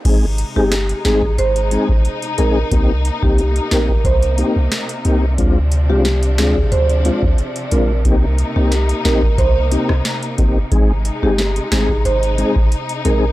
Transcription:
0.05 sub bass G#1, string section C3 G#3 D#4, tonewheel organ G#3 C4 D#4 G#4, kick, closed hi-hat, crash
0.38 closed hi-hat
0.56 sub bass G1, tonewheel organ G#3 C4 D#4 G#4, marimba G4
0.72 snare, closed hi-hat
0.89 closed hi-hat
1.05 sub bass G#1, tonewheel organ G#3 C4 D#4 G#4, marimba G#4, snare, closed hi-hat
1.23 kick
1.38 sub bass G#1, marimba C5, closed hi-hat
1.56 closed hi-hat
1.71 tonewheel organ G#3 C4 D#4 G#4, closed hi-hat
1.89 sub bass G#1, kick
2.05 closed hi-hat
2.22 closed hi-hat
2.38 sub bass A#1, tonewheel organ G#3 C4 D#4 G#4, marimba A#4, closed hi-hat
2.72 sub bass C2, tonewheel organ A#3 C4 D#4 G4, string section A#3, kick, closed hi-hat
3.05 closed hi-hat
3.22 sub bass C2, tonewheel organ A#3 C4 D#4 G4, marimba G4, kick
3.38 closed hi-hat
3.56 closed hi-hat
3.71 sub bass A#1, tonewheel organ A#3 C4 D#4 G4, marimba A#4, snare, closed hi-hat
3.89 kick
4.05 sub bass C2, marimba C5, kick, closed hi-hat
4.23 closed hi-hat
4.38 tonewheel organ A#3 C4 D#4 G4, closed hi-hat
4.56 sub bass C2
4.72 snare, closed hi-hat
4.89 closed hi-hat
5.05 sub bass C2, tonewheel organ A#3 C4 D#4 G4, closed hi-hat
5.38 sub bass D2, string section F3 D4, tonewheel organ G#3 C4 D4 F4, kick, closed hi-hat
5.72 closed hi-hat
5.89 sub bass C2, tonewheel organ G#3 C4 D4 F4, marimba G4
6.05 snare, closed hi-hat
6.23 closed hi-hat
6.38 sub bass D2, tonewheel organ G#3 C4 D4 F4, marimba G#4, snare, closed hi-hat
6.56 kick
6.72 sub bass D2, marimba C5, closed hi-hat
6.90 closed hi-hat
7.05 tonewheel organ G#3 C4 D4 F4, closed hi-hat
7.23 sub bass D2, kick
7.38 closed hi-hat
7.56 closed hi-hat
7.71 sub bass A#1, tonewheel organ G#3 C4 D4 F4, marimba A#4, closed hi-hat
8.05 sub bass C2, tonewheel organ A#3 C4 D#4 G4, string section A#3 D#4, kick, closed hi-hat
8.38 closed hi-hat
8.56 sub bass C2, tonewheel organ A#3 C4 D#4 G4, marimba G4
8.72 snare, closed hi-hat
8.89 closed hi-hat
9.05 sub bass A#1, tonewheel organ A#3 C4 D#4 G4, marimba A#4, snare, closed hi-hat
9.23 kick
9.38 sub bass C2, marimba C5, kick, closed hi-hat
9.72 tonewheel organ A#3 C4 D#4 G4, closed hi-hat
9.89 sub bass C2, cross-stick
10.05 snare, closed hi-hat
10.23 closed hi-hat
10.38 sub bass G1, tonewheel organ A#3 C4 D#4 G4, kick, closed hi-hat
10.71 sub bass G#1, tonewheel organ G#3 C4 D#4 G#4, string section G#3 D#4, kick, closed hi-hat
11.05 closed hi-hat
11.23 sub bass G1, tonewheel organ G#3 C4 D#4 G#4, marimba G4
11.38 snare, closed hi-hat
11.56 closed hi-hat
11.72 sub bass G#1, tonewheel organ G#3 C4 D#4 G#4, marimba G#4, snare, closed hi-hat
11.89 kick
12.05 sub bass G#1, marimba C5, closed hi-hat
12.23 closed hi-hat
12.38 tonewheel organ G#3 C4 D#4 G#4, closed hi-hat
12.56 sub bass G#1, kick
12.72 closed hi-hat
12.89 closed hi-hat
13.05 sub bass A#1, tonewheel organ G#3 C4 D#4 G#4, marimba A#4, closed hi-hat

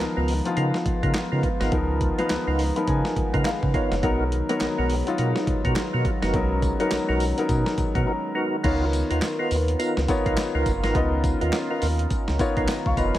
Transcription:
Already playing: analog synth pad D#3 G#3 B3 F4, grand piano F3 B3 D#4 A#4
0.00 clap
0.17 analog synth bass C#2, tonewheel organ B3 D#4 F4 A#4
0.28 open hi-hat
0.45 grand piano F3 B3 D#4 F4, closed hi-hat
0.57 analog synth bass C#3, tonewheel organ B3 D#4 F4 A#4, closed hi-hat
0.74 snare
0.86 analog synth bass C#3, kick, closed hi-hat
1.03 analog synth bass C#3, tonewheel organ B3 D#4 F4 A#4, kick, closed hi-hat
1.14 snare, clap, closed hi-hat
1.31 analog synth bass C#3, tonewheel organ B3 D#4 F4 A#4
1.43 kick, closed hi-hat
1.60 analog synth bass G#1, tonewheel organ B3 D#4 F4 A#4, snare, closed hi-hat
1.72 analog synth bass C#2, grand piano F3 B3 D#4 A#4, kick, closed hi-hat
2.01 kick, closed hi-hat
2.18 grand piano F3 B3 D#4 B4, tonewheel organ B3 D#4 F4 A#4, closed hi-hat
2.30 analog synth bass C#2, snare, clap, closed hi-hat
2.47 analog synth bass C#2, tonewheel organ B3 D#4 F4 A#4
2.59 grand piano A#5, open hi-hat
2.76 grand piano F3 B3 D#4 A#4 B5, closed hi-hat
2.87 analog synth bass C#3, grand piano G#5, kick, closed hi-hat
3.05 snare
3.16 analog synth bass C#3, kick, closed hi-hat
3.34 analog synth bass C#3, tonewheel organ B3 D#4 F4 A#4, grand piano F#5, kick, closed hi-hat
3.45 grand piano F5, snare, clap, closed hi-hat
3.63 analog synth bass C#3, kick
3.74 tonewheel organ B3 D#4 F4 A#4, grand piano C#5, kick, closed hi-hat
3.92 analog synth bass F#1, snare, closed hi-hat
4.03 analog synth bass B1, analog synth pad F#3, grand piano F#3 B3 D#4 A#4, tonewheel organ B3 D#4 F#4 A#4, kick, closed hi-hat
4.32 closed hi-hat
4.49 grand piano F#3 B3 D#4 A#4, tonewheel organ B3 D#4 F#4 A#4, closed hi-hat
4.60 analog synth bass B1, snare, clap, closed hi-hat
4.78 analog synth bass B1, tonewheel organ B3 D#4 F#4 A#4
4.90 open hi-hat
5.07 grand piano F#3 B3 D#4 F4, closed hi-hat
5.18 analog synth bass B2, tonewheel organ B3 D#4 F#4 A#4, closed hi-hat
5.36 snare
5.47 analog synth bass B2, kick, closed hi-hat
5.65 analog synth bass B2, tonewheel organ B3 D#4 F#4 A#4, kick, closed hi-hat
5.76 snare, clap, closed hi-hat
5.93 analog synth bass B2, tonewheel organ B3 D#4 F#4 A#4
6.05 kick, closed hi-hat
6.22 analog synth bass F#1, tonewheel organ B3 D#4 F#4 A#4, snare, closed hi-hat
6.33 analog synth bass B1, grand piano F#3 B3 D#4 A#4, analog synth pad C#4, kick, closed hi-hat
6.62 kick, closed hi-hat, tambourine
6.80 grand piano F#3 B3 D#4 A#4, tonewheel organ B3 D#4 F#4 A#4, closed hi-hat
6.91 analog synth bass B1, snare, clap, closed hi-hat, tambourine
7.08 analog synth bass B1, tonewheel organ B3 D#4 F#4 A#4
7.20 open hi-hat, tambourine
7.38 grand piano F#3 B3 D#4 A#4, closed hi-hat
7.49 analog synth bass B2, kick, closed hi-hat, tambourine
7.66 snare
7.78 analog synth bass B2, kick, closed hi-hat, tambourine
7.95 analog synth bass B2, tonewheel organ B3 D#4 F#4 A#4, kick, closed hi-hat
8.07 grand piano A#5
8.35 tonewheel organ B3 D#4 F#4 A#4
8.63 analog synth bass C#2, analog synth pad D#3 B3 F4 A#4, tonewheel organ B3 D#4 F4 A#4, grand piano B3 D#4 F4 A#4 C#5, kick, closed hi-hat, crash
8.93 closed hi-hat, tambourine
9.10 analog synth bass D#2, tonewheel organ B3 D#4 F4 A#4, closed hi-hat
9.22 snare, clap, closed hi-hat, tambourine
9.39 tonewheel organ B3 D#4 F4 A#4
9.51 analog synth bass D#2, open hi-hat, tambourine
9.68 closed hi-hat
9.79 tonewheel organ B3 D#4 F4 A#4, closed hi-hat, tambourine
9.97 analog synth bass C#2, snare
10.08 grand piano B3 D#4 F4 A#4 C#5, kick, closed hi-hat, tambourine
10.26 analog synth bass B1, tonewheel organ B3 D#4 F4 A#4, kick, closed hi-hat
10.37 snare, clap, closed hi-hat, tambourine
10.55 analog synth bass C#2, tonewheel organ B3 D#4 F4 A#4
10.66 analog synth bass F#1, kick, closed hi-hat, tambourine
10.84 analog synth bass G#1, tonewheel organ B3 D#4 F4 A#4, snare, closed hi-hat
10.95 analog synth bass C#2, grand piano B3 D#4 F4 A#4 D#5, analog synth pad C#4, kick, closed hi-hat
11.24 kick, closed hi-hat, tambourine
11.41 analog synth bass D#2, tonewheel organ B3 D#4 F4 A#4, closed hi-hat
11.53 snare, clap, closed hi-hat, tambourine
11.70 tonewheel organ B3 D#4 F4 A#4
11.82 analog synth bass D#2, open hi-hat, tambourine
11.99 closed hi-hat
12.10 kick, closed hi-hat, tambourine
12.28 analog synth bass C#2, snare
12.39 grand piano B3 D#4 F4 A#4 C#5, kick, closed hi-hat, tambourine
12.57 analog synth bass B1, tonewheel organ B3 D#4 F4 A#4, kick, closed hi-hat
12.68 grand piano C#5 A#5, snare, clap, closed hi-hat, tambourine
12.86 analog synth bass C#2, grand piano F5 C#6, kick
12.97 analog synth bass F1, tonewheel organ B3 D#4 F4 A#4, grand piano D#5 B5, kick, closed hi-hat, tambourine
13.15 analog synth bass F#1, grand piano B4 G#5, snare, closed hi-hat

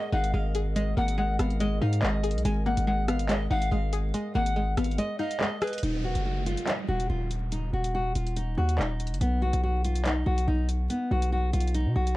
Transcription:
Already playing: synth pluck G#3 A#3 B3, analog synth pad G#3 G#4 A#4 D#5, nylon-string guitar D#5, pan flute D#5
0.12 808-style bass G#1, synth pluck D#4, pan flute F5, nylon-string guitar F#5
0.24 closed hi-hat
0.34 808-style bass G#1, synth pluck G#3, nylon-string guitar F5
0.55 synth pluck G#4, closed hi-hat
0.76 synth pluck G#3, nylon-string guitar D#5, closed hi-hat
0.97 808-style bass G#1, synth pluck A#3, pan flute F#5, nylon-string guitar F#5
1.08 closed hi-hat
1.18 synth pluck G#3, nylon-string guitar F#5
1.39 808-style bass G#1, synth pluck B3, nylon-string guitar F5, cross-stick, closed hi-hat
1.50 closed hi-hat
1.60 synth pluck G#3, nylon-string guitar D#5, closed hi-hat
1.82 808-style bass G#2, synth pluck D#4, nylon-string guitar F5
1.93 closed hi-hat
2.03 808-style bass G#1, synth pluck G#3, nylon-string guitar D#5, clap
2.23 synth pluck G#4, closed hi-hat
2.31 closed hi-hat
2.35 808-style bass B1, closed hi-hat
2.45 808-style bass G#1, synth pluck G#3, nylon-string guitar G#5, closed hi-hat
2.66 synth pluck A#3, nylon-string guitar F#5
2.77 808-style bass G#1, closed hi-hat
2.87 synth pluck G#3, nylon-string guitar F#5
3.08 synth pluck B3, nylon-string guitar F5, cross-stick, closed hi-hat
3.19 closed hi-hat
3.29 synth pluck G#3, pan flute D#5, nylon-string guitar D#5, clap, closed hi-hat
3.51 808-style bass G#1, synth pluck D#4, pan flute F5, nylon-string guitar F#5
3.62 closed hi-hat
3.71 808-style bass G#1, synth pluck G#3, nylon-string guitar F5
3.93 synth pluck G#4, closed hi-hat
4.14 synth pluck G#3, nylon-string guitar D#5, closed hi-hat
4.35 808-style bass G#1, synth pluck A#3, nylon-string guitar F#5, pan flute F#5
4.46 closed hi-hat
4.56 synth pluck G#3, nylon-string guitar F#5
4.77 808-style bass G#1, synth pluck B3, nylon-string guitar F5, cross-stick, closed hi-hat
4.84 closed hi-hat
4.91 closed hi-hat
4.98 synth pluck G#3, nylon-string guitar D#5, closed hi-hat
5.19 synth pluck D#4, pan flute D#5, nylon-string guitar F5
5.31 closed hi-hat
5.40 synth pluck G#3, nylon-string guitar D#5, clap
5.61 synth pluck G#4, pan flute B4, cross-stick, closed hi-hat, open hi-hat
5.67 closed hi-hat
5.73 closed hi-hat
5.78 closed hi-hat
5.83 808-style bass D#1, nylon-string guitar D#4, closed hi-hat, downlifter
6.04 nylon-string guitar F#4
6.15 808-style bass F#1, closed hi-hat
6.25 nylon-string guitar F#4
6.46 nylon-string guitar F4, closed hi-hat
6.57 closed hi-hat
6.67 nylon-string guitar D#4, clap, closed hi-hat
6.88 808-style bass D#1, nylon-string guitar F#4
7.00 closed hi-hat
7.10 808-style bass D#1, nylon-string guitar F4
7.31 closed hi-hat
7.52 nylon-string guitar D#4, closed hi-hat
7.73 808-style bass D#1, nylon-string guitar F#4
7.84 closed hi-hat
7.95 nylon-string guitar F#4
8.15 808-style bass D#1, nylon-string guitar F4, closed hi-hat
8.27 closed hi-hat
8.36 nylon-string guitar D#4, closed hi-hat
8.58 808-style bass D#2, nylon-string guitar F#4
8.69 closed hi-hat
8.79 808-style bass D#1, nylon-string guitar D#4, clap
9.00 closed hi-hat
9.07 closed hi-hat
9.11 808-style bass F#1, closed hi-hat
9.21 808-style bass B1, nylon-string guitar B3, closed hi-hat
9.42 nylon-string guitar F#4
9.53 808-style bass B1, closed hi-hat
9.63 nylon-string guitar F#4
9.84 nylon-string guitar F4, closed hi-hat
9.95 closed hi-hat
10.05 nylon-string guitar D#4, clap, closed hi-hat
10.26 808-style bass B1, nylon-string guitar F#4
10.38 closed hi-hat
10.48 808-style bass B1, nylon-string guitar D#4
10.69 closed hi-hat
10.90 nylon-string guitar B3, closed hi-hat
11.11 808-style bass B1, nylon-string guitar F#4
11.22 closed hi-hat
11.32 nylon-string guitar F#4
11.53 808-style bass B1, nylon-string guitar F4, closed hi-hat
11.60 closed hi-hat
11.67 closed hi-hat
11.74 nylon-string guitar D#4, closed hi-hat
11.86 808-style bass B2
11.96 808-style bass B1, nylon-string guitar F#4
12.07 closed hi-hat

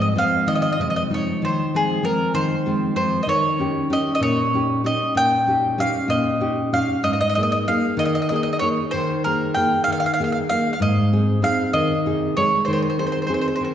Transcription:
Already playing: nylon-string guitar G#2 F3 G#3 C4
0.02 mandolin D#5
0.16 nylon-string guitar F3 G#3 C4, mandolin F5
0.47 nylon-string guitar D#3, mandolin D#5
0.55 mandolin D#5
0.62 mandolin D#5
0.72 mandolin D#5
0.79 nylon-string guitar C3 F3 G#3, mandolin D#5
0.90 mandolin D#5
0.96 mandolin D#5
1.10 nylon-string guitar F3 G#3 D#4
1.14 mandolin C#5
1.42 nylon-string guitar D#3, mandolin C5
1.74 nylon-string guitar F3 G#3 C4, mandolin G#4
2.03 nylon-string guitar F3 G#3 C4, mandolin A#4
2.34 nylon-string guitar D#3, mandolin C5
2.66 nylon-string guitar F3 G#3 C4
2.96 nylon-string guitar F3 G#3 C4, mandolin C5
3.23 nylon-string guitar D#3, mandolin D#5
3.29 mandolin C#5
3.59 nylon-string guitar C#4 D#4 G4
3.90 nylon-string guitar C#4 D#4 G4, mandolin D#5
4.15 mandolin D#5
4.20 nylon-string guitar A#2, mandolin C#5
4.54 nylon-string guitar C#4 D#4 G4
4.84 nylon-string guitar C#4 D#4 G4, mandolin D#5
5.15 nylon-string guitar A#2, mandolin G5
5.47 nylon-string guitar C#4 D#4 G4
5.78 nylon-string guitar C#4 D#4 G4, mandolin F5
6.08 nylon-string guitar A#2, mandolin D#5
6.40 nylon-string guitar C#4 D#4 G4
6.73 nylon-string guitar C#4 D#4 G4, mandolin F5
7.03 nylon-string guitar G#2, mandolin D#5
7.13 mandolin D#5
7.21 mandolin D#5
7.29 mandolin D#5
7.35 nylon-string guitar A#3 D#4 G#4, mandolin D#5
7.43 mandolin D#5
7.52 mandolin D#5
7.68 nylon-string guitar A#3 D#4 G#4, mandolin F5
7.97 nylon-string guitar D#3, mandolin D#5
8.05 mandolin D#5
8.15 mandolin D#5
8.22 mandolin D#5
8.29 nylon-string guitar A#3 D#4 G#4, mandolin D#5
8.36 mandolin D#5
8.43 mandolin D#5
8.53 mandolin D#5
8.59 nylon-string guitar A#3 D#4 G#4, mandolin C#5
8.91 nylon-string guitar D#3, mandolin C5
9.24 nylon-string guitar A#3 D#4 G#4, mandolin A#4
9.54 nylon-string guitar A#3 D#4 G#4, mandolin G5
9.84 nylon-string guitar D#3, mandolin F5
9.92 mandolin F5
10.00 mandolin F5
10.06 mandolin F5
10.14 mandolin F5
10.20 nylon-string guitar A#3 D#4 G#4
10.24 mandolin F5
10.32 mandolin F5
10.49 nylon-string guitar A#3 D#4 G#4, mandolin F5
10.73 mandolin F5
10.80 nylon-string guitar G#2, mandolin D#5
11.13 nylon-string guitar C4 D#4 G#4
11.42 nylon-string guitar C4 D#4 G#4, mandolin F5
11.73 nylon-string guitar D#3, mandolin D#5
12.06 nylon-string guitar C3 D#4 G#4
12.37 nylon-string guitar G#3 D#4 G#4, mandolin C#5
12.65 nylon-string guitar D#3, mandolin C5
12.73 mandolin C5
12.82 mandolin C5
12.90 mandolin C5
12.98 nylon-string guitar C4 D#4 G#4, mandolin C5
13.07 mandolin C5
13.12 mandolin C5
13.22 mandolin C5
13.27 nylon-string guitar C4 D#4 G#4, mandolin C5
13.34 mandolin C5
13.41 mandolin C5
13.48 mandolin C5
13.56 mandolin C5
13.61 nylon-string guitar D#3, mandolin C5

